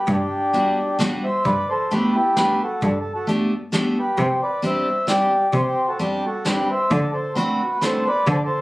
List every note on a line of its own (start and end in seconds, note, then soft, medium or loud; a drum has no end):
0.07 0.16 G2 medium
0.07 kick medium
0.07 closed hi-hat soft
0.13 0.98 D4 medium
0.13 0.98 G4 medium
0.53 0.78 G3 medium
0.53 0.78 B3 medium
0.53 0.78 D4 medium
0.53 0.78 F#4 medium
0.53 closed hi-hat medium
0.99 1.23 G3 medium
0.99 1.24 B3 medium
0.99 1.24 D4 medium
0.99 1.24 F#4 medium
0.99 snare medium
0.99 closed hi-hat soft
1.24 1.44 C5 medium
1.24 1.46 E5 medium
1.44 1.53 G2 medium
1.44 1.68 B4 medium
1.44 1.70 D5 medium
1.44 kick medium
1.44 closed hi-hat soft
1.69 1.90 A4 medium
1.69 1.91 C5 medium
1.90 2.16 A3 medium
1.90 2.16 B3 soft
1.90 2.16 D4 medium
1.90 2.14 G4 medium
1.90 2.16 G4 medium
1.90 2.16 B4 medium
1.90 closed hi-hat medium
2.15 2.35 E4 medium
2.15 2.37 G4 medium
2.36 2.61 A3 medium
2.36 2.61 B3 medium
2.36 2.62 D4 medium
2.36 2.60 G4 medium
2.36 2.62 G4 medium
2.36 2.62 B4 medium
2.36 snare medium
2.36 closed hi-hat soft
2.63 2.82 F#4 medium
2.63 2.84 A4 medium
2.82 2.90 G2 medium
2.82 kick medium
2.82 closed hi-hat soft
2.86 2.98 D4 medium
2.86 2.99 A4 medium
3.00 3.13 A4 medium
3.14 3.28 F#4 medium
3.14 3.28 A4 medium
3.27 3.51 A3 medium
3.27 3.52 B3 medium
3.27 3.52 D4 medium
3.27 3.52 G4 medium
3.27 closed hi-hat medium
3.72 3.97 A3 medium
3.72 3.97 B3 medium
3.72 3.97 D4 medium
3.72 3.97 G4 medium
3.72 snare medium
3.72 closed hi-hat medium
3.99 4.17 G4 medium
3.99 4.20 B4 medium
4.18 4.26 C3 medium
4.18 4.41 G4 medium
4.18 4.43 C5 medium
4.18 kick medium
4.18 closed hi-hat soft
4.42 4.62 B4 medium
4.42 4.64 D5 medium
4.62 4.87 G3 medium
4.62 4.87 C4 medium
4.62 4.87 D4 soft
4.62 4.88 G4 medium
4.62 5.06 C5 medium
4.62 5.07 E5 medium
4.62 closed hi-hat medium
5.07 5.32 G3 medium
5.07 5.32 C4 soft
5.07 5.32 D4 soft
5.07 5.51 G4 medium
5.07 5.32 G4 medium
5.07 5.55 D5 medium
5.07 snare medium
5.07 closed hi-hat soft
5.53 5.61 C3 medium
5.53 5.87 G4 medium
5.53 5.90 C5 medium
5.53 kick medium
5.53 closed hi-hat soft
5.88 5.98 F#4 soft
5.88 6.00 A4 medium
5.99 6.24 G3 medium
5.99 6.24 C4 medium
5.99 6.24 D4 soft
5.99 6.23 D4 medium
5.99 6.24 G4 medium
5.99 6.26 G4 medium
5.99 closed hi-hat soft
6.26 6.45 F#4 medium
6.26 6.45 A4 medium
6.45 6.69 G3 soft
6.45 6.69 C4 medium
6.45 6.69 D4 soft
6.45 6.70 G4 medium
6.45 6.68 G4 medium
6.45 6.71 B4 medium
6.45 snare medium
6.45 closed hi-hat soft
6.70 6.89 C5 medium
6.70 6.92 E5 medium
6.91 6.99 D3 medium
6.91 7.11 A4 medium
6.91 7.17 D5 medium
6.91 kick medium
6.91 closed hi-hat soft
7.12 7.33 A4 medium
7.12 7.36 C5 medium
7.35 7.60 A3 medium
7.35 7.60 C4 medium
7.35 7.61 D4 medium
7.35 7.78 F#4 medium
7.35 7.61 F#4 medium
7.35 7.83 B4 medium
7.35 closed hi-hat medium
7.81 8.06 A3 medium
7.81 8.06 C4 soft
7.81 8.06 D4 soft
7.81 8.06 F#4 soft
7.81 8.04 A4 medium
7.81 8.08 C5 medium
7.81 snare medium
7.81 closed hi-hat medium
8.06 8.26 B4 medium
8.06 8.29 D5 medium
8.27 8.35 D3 medium
8.27 kick medium
8.27 closed hi-hat soft
8.31 8.36 A4 medium
8.31 8.37 C5 medium
8.31 8.42 D5 medium
8.44 8.61 A4 medium
8.44 8.61 C5 medium